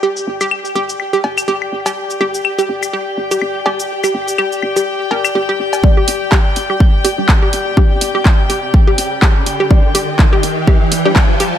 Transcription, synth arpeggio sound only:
X:1
M:4/4
L:1/16
Q:"Swing 16ths" 1/4=124
K:Cm
V:1 name="Synth arpeggio sound"
G z2 G z2 G z2 G z2 G z2 G | z2 G z2 G z2 G z2 G z2 G z | z G z2 G z2 G z2 B z G G z2 | z G z2 G z2 G z2 G z2 G z2 |
G z2 G z2 G z2 G z2 G z2 G | z2 G z2 G z2 G z2 G z2 G z |]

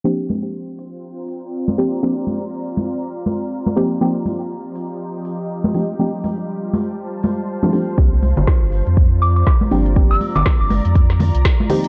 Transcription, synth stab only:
X:1
M:4/4
L:1/16
Q:"Swing 16ths" 1/4=121
K:Gdor
V:1 name="Synth stab"
[F,B,CDG]12- [F,B,CDG]2 [F,B,CDG]2 | [F,B,CDG]12- [F,B,CDG]2 [F,B,C_EG]2 | [F,B,C_EG]12- [F,B,CEG]2 [F,A,CDG]2 | [F,A,CDG]12- [F,A,CDG] [F,A,CDG] [F,A,CDG]2 |
[F,B,CDG]12- [F,B,CDG]2 [F,B,CDG]2 | [F,B,CDG]12- [F,B,CDG]2 [F,B,C_EG]2 |]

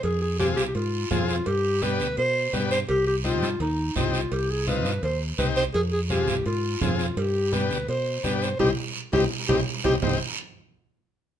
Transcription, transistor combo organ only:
X:1
M:4/4
L:1/8
Q:1/4=168
K:Cm
V:1 name="Transistor combo organ"
z2 [CFA] z3 [CFA] z | z2 [=B,DG] z3 [B,DG] z | z2 [CEG] z3 [CEG] z | z2 [CEF] z3 [CEG] z |
z2 [CFA] z3 [CFA] z | z2 [=B,DG] z3 [B,DG] z | [CEG] z2 [CEG] z [CEG] z [CEG] | [CEG] z6 z |]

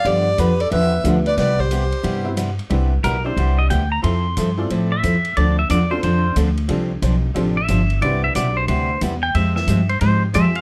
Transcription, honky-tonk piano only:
X:1
M:4/4
L:1/8
Q:"Swing" 1/4=181
K:C
V:1 name="Honky-tonk piano"
z6 [B,DFGB]2 | z4 z [B,CEGB] z2 | [CDEGB] z2 [CDEGd]3 z2 | [CEFAc] z2 [CEFAd]3 z2 |
z3 [CDFAc]3 z2 | [CDFGA] z3 [CDFGA] z3 | [CDEGB]4- [CDEGB] z3 | z6 [CFG_Ac]2 |]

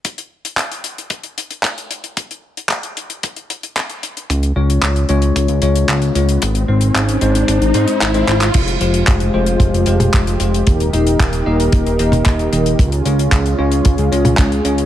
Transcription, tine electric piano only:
X:1
M:4/4
L:1/16
Q:1/4=113
K:Fm
V:1 name="Tine electric piano"
z16 | z16 | z2 [A,DFd]4 [A,DFd]4 [A,DFd]4 [A,DFd]2 | z2 [A,CEc]4 [A,CEc]4 [A,CEc]3 [A,CEc] [A,CEc] z |
z2 [A,FGc]4 [A,FGc]4 [A,FGc]4 [A,FGc]2 | z2 [B,EGe]4 [B,EGe]4 [B,EGe]4 [B,EGe]2 | z2 [A,DFd]4 [A,DFd]4 [A,DFd]4 [A,DFd]2 |]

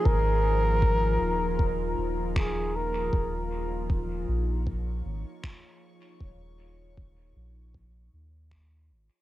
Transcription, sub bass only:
X:1
M:4/4
L:1/8
Q:"Swing 16ths" 1/4=78
K:Ebmix
V:1 name="Sub bass" clef=bass
A,,,3 E,,,2 E,,,3 | E,,,3 B,,,2 A,,, z2 | E,,,3 B,,,2 E,,2 A,,, |]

